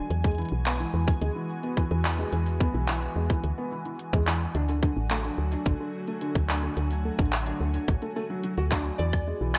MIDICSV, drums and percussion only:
0, 0, Header, 1, 2, 480
1, 0, Start_track
1, 0, Tempo, 555556
1, 90, Time_signature, 4, 2, 24, 8
1, 8282, End_track
2, 0, Start_track
2, 0, Title_t, "Drums"
2, 91, Note_on_c, 9, 42, 67
2, 177, Note_off_c, 9, 42, 0
2, 210, Note_on_c, 9, 36, 104
2, 211, Note_on_c, 9, 42, 22
2, 241, Note_off_c, 9, 42, 0
2, 241, Note_on_c, 9, 42, 25
2, 271, Note_off_c, 9, 42, 0
2, 271, Note_on_c, 9, 42, 29
2, 296, Note_off_c, 9, 36, 0
2, 301, Note_off_c, 9, 42, 0
2, 301, Note_on_c, 9, 42, 30
2, 331, Note_off_c, 9, 42, 0
2, 331, Note_on_c, 9, 42, 35
2, 361, Note_off_c, 9, 42, 0
2, 361, Note_on_c, 9, 42, 35
2, 391, Note_off_c, 9, 42, 0
2, 391, Note_on_c, 9, 42, 38
2, 420, Note_off_c, 9, 42, 0
2, 420, Note_on_c, 9, 42, 45
2, 507, Note_off_c, 9, 42, 0
2, 570, Note_on_c, 9, 39, 119
2, 570, Note_on_c, 9, 42, 77
2, 656, Note_off_c, 9, 39, 0
2, 656, Note_off_c, 9, 42, 0
2, 690, Note_on_c, 9, 42, 37
2, 776, Note_off_c, 9, 42, 0
2, 930, Note_on_c, 9, 36, 119
2, 930, Note_on_c, 9, 42, 47
2, 1016, Note_off_c, 9, 42, 0
2, 1017, Note_off_c, 9, 36, 0
2, 1050, Note_on_c, 9, 42, 77
2, 1137, Note_off_c, 9, 42, 0
2, 1411, Note_on_c, 9, 42, 34
2, 1497, Note_off_c, 9, 42, 0
2, 1530, Note_on_c, 9, 36, 101
2, 1531, Note_on_c, 9, 42, 71
2, 1617, Note_off_c, 9, 36, 0
2, 1617, Note_off_c, 9, 42, 0
2, 1651, Note_on_c, 9, 42, 36
2, 1737, Note_off_c, 9, 42, 0
2, 1769, Note_on_c, 9, 39, 113
2, 1856, Note_off_c, 9, 39, 0
2, 2010, Note_on_c, 9, 42, 69
2, 2096, Note_off_c, 9, 42, 0
2, 2130, Note_on_c, 9, 42, 44
2, 2217, Note_off_c, 9, 42, 0
2, 2250, Note_on_c, 9, 36, 108
2, 2337, Note_off_c, 9, 36, 0
2, 2490, Note_on_c, 9, 39, 118
2, 2490, Note_on_c, 9, 42, 80
2, 2576, Note_off_c, 9, 39, 0
2, 2576, Note_off_c, 9, 42, 0
2, 2610, Note_on_c, 9, 42, 35
2, 2696, Note_off_c, 9, 42, 0
2, 2849, Note_on_c, 9, 42, 46
2, 2850, Note_on_c, 9, 36, 108
2, 2936, Note_off_c, 9, 42, 0
2, 2937, Note_off_c, 9, 36, 0
2, 2970, Note_on_c, 9, 42, 75
2, 3056, Note_off_c, 9, 42, 0
2, 3330, Note_on_c, 9, 42, 34
2, 3417, Note_off_c, 9, 42, 0
2, 3451, Note_on_c, 9, 42, 71
2, 3537, Note_off_c, 9, 42, 0
2, 3570, Note_on_c, 9, 36, 109
2, 3657, Note_off_c, 9, 36, 0
2, 3690, Note_on_c, 9, 39, 113
2, 3777, Note_off_c, 9, 39, 0
2, 3930, Note_on_c, 9, 42, 74
2, 4016, Note_off_c, 9, 42, 0
2, 4050, Note_on_c, 9, 42, 48
2, 4137, Note_off_c, 9, 42, 0
2, 4170, Note_on_c, 9, 36, 103
2, 4256, Note_off_c, 9, 36, 0
2, 4409, Note_on_c, 9, 39, 112
2, 4409, Note_on_c, 9, 42, 77
2, 4496, Note_off_c, 9, 39, 0
2, 4496, Note_off_c, 9, 42, 0
2, 4529, Note_on_c, 9, 42, 37
2, 4615, Note_off_c, 9, 42, 0
2, 4769, Note_on_c, 9, 42, 48
2, 4855, Note_off_c, 9, 42, 0
2, 4888, Note_on_c, 9, 42, 72
2, 4890, Note_on_c, 9, 36, 111
2, 4974, Note_off_c, 9, 42, 0
2, 4976, Note_off_c, 9, 36, 0
2, 5249, Note_on_c, 9, 42, 33
2, 5335, Note_off_c, 9, 42, 0
2, 5369, Note_on_c, 9, 42, 75
2, 5455, Note_off_c, 9, 42, 0
2, 5489, Note_on_c, 9, 42, 36
2, 5490, Note_on_c, 9, 36, 101
2, 5575, Note_off_c, 9, 42, 0
2, 5576, Note_off_c, 9, 36, 0
2, 5609, Note_on_c, 9, 39, 114
2, 5696, Note_off_c, 9, 39, 0
2, 5849, Note_on_c, 9, 42, 77
2, 5935, Note_off_c, 9, 42, 0
2, 5968, Note_on_c, 9, 42, 49
2, 6055, Note_off_c, 9, 42, 0
2, 6209, Note_on_c, 9, 42, 32
2, 6210, Note_on_c, 9, 36, 108
2, 6269, Note_off_c, 9, 42, 0
2, 6269, Note_on_c, 9, 42, 27
2, 6297, Note_off_c, 9, 36, 0
2, 6329, Note_off_c, 9, 42, 0
2, 6329, Note_on_c, 9, 39, 119
2, 6329, Note_on_c, 9, 42, 86
2, 6389, Note_off_c, 9, 42, 0
2, 6389, Note_on_c, 9, 42, 19
2, 6415, Note_off_c, 9, 39, 0
2, 6448, Note_off_c, 9, 42, 0
2, 6448, Note_on_c, 9, 42, 38
2, 6535, Note_off_c, 9, 42, 0
2, 6688, Note_on_c, 9, 42, 51
2, 6775, Note_off_c, 9, 42, 0
2, 6808, Note_on_c, 9, 42, 76
2, 6810, Note_on_c, 9, 36, 104
2, 6895, Note_off_c, 9, 42, 0
2, 6897, Note_off_c, 9, 36, 0
2, 6929, Note_on_c, 9, 42, 36
2, 7015, Note_off_c, 9, 42, 0
2, 7289, Note_on_c, 9, 42, 79
2, 7375, Note_off_c, 9, 42, 0
2, 7409, Note_on_c, 9, 42, 39
2, 7496, Note_off_c, 9, 42, 0
2, 7529, Note_on_c, 9, 39, 114
2, 7530, Note_on_c, 9, 36, 117
2, 7615, Note_off_c, 9, 39, 0
2, 7617, Note_off_c, 9, 36, 0
2, 7649, Note_on_c, 9, 42, 36
2, 7735, Note_off_c, 9, 42, 0
2, 7769, Note_on_c, 9, 42, 76
2, 7856, Note_off_c, 9, 42, 0
2, 7890, Note_on_c, 9, 36, 103
2, 7890, Note_on_c, 9, 42, 52
2, 7890, Note_on_c, 9, 76, 50
2, 7976, Note_off_c, 9, 42, 0
2, 7976, Note_off_c, 9, 76, 0
2, 7977, Note_off_c, 9, 36, 0
2, 8249, Note_on_c, 9, 39, 121
2, 8249, Note_on_c, 9, 42, 80
2, 8249, Note_on_c, 9, 76, 85
2, 8282, Note_off_c, 9, 39, 0
2, 8282, Note_off_c, 9, 42, 0
2, 8282, Note_off_c, 9, 76, 0
2, 8282, End_track
0, 0, End_of_file